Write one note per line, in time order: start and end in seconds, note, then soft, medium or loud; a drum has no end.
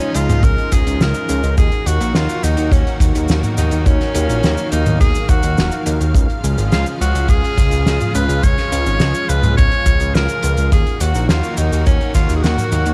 0.00 1.54 C#3 medium
0.00 1.54 F3 medium
0.00 1.54 G#3 medium
0.00 0.17 C#4 loud
0.00 1.56 D#4 medium
0.00 closed hi-hat soft
0.00 cabasa soft
0.14 0.28 C#2 medium
0.14 0.46 F4 loud
0.14 closed hi-hat loud
0.14 cabasa medium
0.29 0.42 C#2 medium
0.29 closed hi-hat medium
0.29 mid tom loud
0.29 cabasa soft
0.43 0.56 C#2 loud
0.43 0.74 A#4 loud
0.43 kick loud
0.43 closed hi-hat medium
0.43 cabasa medium
0.58 closed hi-hat soft
0.72 0.85 C#2 loud
0.72 1.03 G#4 loud
0.72 kick loud
0.72 closed hi-hat loud
0.72 cabasa medium
0.86 0.99 C#2 medium
0.86 closed hi-hat medium
0.86 cabasa soft
1.01 1.14 C#2 medium
1.01 1.58 A#4 loud
1.01 snare loud
1.01 closed hi-hat medium
1.01 cabasa soft
1.14 closed hi-hat medium
1.14 cabasa soft
1.29 1.42 C#2 loud
1.29 closed hi-hat loud
1.29 cabasa medium
1.43 1.56 C#2 medium
1.43 closed hi-hat medium
1.43 cabasa soft
1.58 1.71 D#2 loud
1.58 6.11 D#3 medium
1.58 6.11 F#3 medium
1.58 6.11 A#3 medium
1.58 3.84 F#4 medium
1.58 1.88 G#4 loud
1.58 kick loud
1.58 closed hi-hat medium
1.58 cabasa medium
1.72 closed hi-hat soft
1.86 1.99 D#2 medium
1.86 2.17 F#4 medium
1.86 closed hi-hat loud
1.86 cabasa medium
2.01 2.13 A#1 medium
2.01 closed hi-hat medium
2.01 cabasa medium
2.15 2.28 D#2 loud
2.15 2.45 F4 medium
2.15 snare loud
2.15 closed hi-hat medium
2.15 cabasa medium
2.29 closed hi-hat soft
2.29 cabasa soft
2.43 2.56 D#2 loud
2.43 2.74 D#4 medium
2.43 closed hi-hat loud
2.43 cabasa medium
2.57 2.71 D#2 medium
2.57 closed hi-hat medium
2.57 cabasa soft
2.72 2.85 D#2 loud
2.72 3.01 C#4 medium
2.72 kick loud
2.72 closed hi-hat medium
2.72 cabasa medium
2.87 closed hi-hat soft
3.00 3.13 D#2 loud
3.00 kick loud
3.00 closed hi-hat loud
3.00 cabasa medium
3.15 3.28 D#2 medium
3.15 closed hi-hat medium
3.15 cabasa soft
3.28 3.42 D#2 loud
3.28 snare loud
3.28 closed hi-hat medium
3.28 cabasa medium
3.43 closed hi-hat soft
3.43 mid tom medium
3.43 cabasa soft
3.57 3.71 D#2 loud
3.57 3.88 D#4 medium
3.57 closed hi-hat medium
3.57 cabasa medium
3.71 3.85 D#2 medium
3.71 closed hi-hat medium
3.71 cabasa soft
3.86 3.99 D#2 loud
3.86 4.72 C#4 loud
3.86 10.68 F5 medium
3.86 kick loud
3.86 closed hi-hat medium
3.86 cabasa medium
4.00 snare soft
4.00 closed hi-hat soft
4.15 4.28 D#2 loud
4.15 closed hi-hat loud
4.15 cabasa medium
4.29 4.42 A#1 medium
4.29 closed hi-hat medium
4.29 cabasa soft
4.43 4.57 D#2 loud
4.43 snare loud
4.43 closed hi-hat medium
4.43 cabasa medium
4.57 closed hi-hat soft
4.57 cabasa soft
4.72 4.85 D#2 medium
4.72 4.99 D#4 loud
4.72 closed hi-hat medium
4.72 cabasa medium
4.86 4.99 D#2 medium
4.86 closed hi-hat medium
4.86 mid tom medium
4.86 cabasa soft
5.01 5.14 D#2 loud
5.01 5.31 G#4 loud
5.01 kick loud
5.01 closed hi-hat medium
5.01 cabasa medium
5.15 closed hi-hat soft
5.15 cabasa soft
5.29 5.42 D#2 loud
5.29 5.86 F#4 loud
5.29 kick loud
5.29 closed hi-hat medium
5.29 cabasa medium
5.43 5.56 D#2 medium
5.43 closed hi-hat medium
5.43 cabasa medium
5.58 5.71 D#1 loud
5.58 snare loud
5.58 closed hi-hat medium
5.58 cabasa medium
5.72 closed hi-hat soft
5.72 cabasa soft
5.86 5.99 D#2 loud
5.86 closed hi-hat loud
5.86 cabasa medium
6.01 6.14 D#2 medium
6.01 closed hi-hat medium
6.01 cabasa soft
6.15 6.28 C#2 loud
6.15 10.68 C#3 medium
6.15 10.68 F3 medium
6.15 10.68 G#3 medium
6.15 kick loud
6.15 closed hi-hat medium
6.15 cabasa medium
6.30 closed hi-hat soft
6.44 6.56 C#2 medium
6.44 closed hi-hat medium
6.44 cabasa medium
6.58 6.71 G#1 medium
6.58 closed hi-hat medium
6.58 cabasa soft
6.72 6.85 C#2 loud
6.72 6.85 F4 loud
6.72 snare loud
6.72 closed hi-hat medium
6.72 cabasa medium
6.86 closed hi-hat soft
6.86 cabasa soft
7.01 7.14 C#2 loud
7.01 7.27 F#4 loud
7.01 closed hi-hat medium
7.01 cabasa medium
7.15 7.28 C#2 medium
7.15 closed hi-hat medium
7.15 cabasa medium
7.28 7.42 C#2 loud
7.28 8.11 G#4 loud
7.28 kick loud
7.28 closed hi-hat medium
7.28 cabasa medium
7.44 closed hi-hat soft
7.58 7.71 C#2 loud
7.58 kick loud
7.58 closed hi-hat loud
7.58 cabasa medium
7.71 7.85 C#2 medium
7.71 closed hi-hat medium
7.71 cabasa soft
7.86 7.99 C#2 loud
7.86 snare loud
7.86 closed hi-hat medium
7.86 cabasa medium
8.01 closed hi-hat medium
8.01 mid tom medium
8.01 cabasa soft
8.15 8.28 C#2 loud
8.15 8.45 B4 loud
8.15 closed hi-hat loud
8.15 cabasa medium
8.29 8.42 C#2 medium
8.29 closed hi-hat medium
8.29 cabasa soft
8.43 8.56 C#2 loud
8.43 9.30 C#5 loud
8.43 kick loud
8.43 closed hi-hat medium
8.43 cabasa medium
8.58 snare soft
8.58 closed hi-hat soft
8.72 8.85 C#2 loud
8.72 closed hi-hat medium
8.72 cabasa medium
8.86 8.99 G#1 medium
8.86 closed hi-hat medium
8.86 cabasa soft
9.00 9.14 C#2 loud
9.00 snare loud
9.00 closed hi-hat medium
9.00 cabasa medium
9.14 closed hi-hat soft
9.14 cabasa medium
9.29 9.42 C#2 loud
9.29 9.57 B4 loud
9.29 closed hi-hat loud
9.29 cabasa medium
9.43 9.56 C#2 medium
9.43 closed hi-hat medium
9.43 mid tom medium
9.43 cabasa soft
9.58 9.71 C#2 loud
9.58 10.16 C#5 loud
9.58 kick loud
9.58 closed hi-hat medium
9.58 cabasa medium
9.72 closed hi-hat soft
9.86 9.99 C#2 loud
9.86 kick loud
9.86 closed hi-hat medium
9.86 cabasa medium
10.00 10.14 C#2 medium
10.00 closed hi-hat medium
10.00 cabasa soft
10.15 10.28 C#2 loud
10.15 10.72 A#4 loud
10.15 snare loud
10.15 closed hi-hat medium
10.15 cabasa medium
10.29 closed hi-hat soft
10.29 cabasa soft
10.43 10.56 C#2 loud
10.43 closed hi-hat medium
10.43 cabasa medium
10.57 10.71 C#2 medium
10.57 closed hi-hat medium
10.57 cabasa soft
10.72 10.85 D#2 loud
10.72 12.94 D#3 medium
10.72 12.94 F#3 medium
10.72 12.94 A#3 medium
10.72 12.94 F#4 medium
10.72 11.03 G#4 loud
10.72 kick loud
10.72 closed hi-hat medium
10.72 cabasa medium
10.87 closed hi-hat soft
11.00 11.13 D#2 medium
11.00 11.29 F#4 loud
11.00 closed hi-hat medium
11.00 cabasa medium
11.15 11.28 A#1 medium
11.15 closed hi-hat medium
11.15 cabasa medium
11.29 11.42 D#2 loud
11.29 11.59 F4 loud
11.29 snare loud
11.29 closed hi-hat medium
11.29 cabasa medium
11.43 closed hi-hat soft
11.43 cabasa soft
11.57 11.71 D#2 medium
11.57 11.86 D#4 loud
11.57 closed hi-hat medium
11.57 cabasa medium
11.72 11.85 D#2 medium
11.72 closed hi-hat medium
11.72 cabasa medium
11.86 12.00 D#2 loud
11.86 12.13 C#4 loud
11.86 kick loud
11.86 closed hi-hat medium
11.86 cabasa medium
12.01 closed hi-hat soft
12.14 12.28 D#2 loud
12.14 12.35 F4 medium
12.14 kick medium
12.14 closed hi-hat loud
12.14 cabasa medium
12.29 12.42 D#2 medium
12.29 closed hi-hat medium
12.29 cabasa medium
12.36 12.45 G#4 medium
12.43 12.56 D#2 loud
12.43 12.94 F#4 loud
12.43 snare loud
12.43 closed hi-hat medium
12.43 cabasa soft
12.57 closed hi-hat soft
12.57 mid tom medium
12.57 cabasa medium
12.72 12.85 D#2 loud
12.72 closed hi-hat medium
12.72 cabasa medium
12.86 12.94 D#2 medium
12.86 closed hi-hat medium
12.86 cabasa soft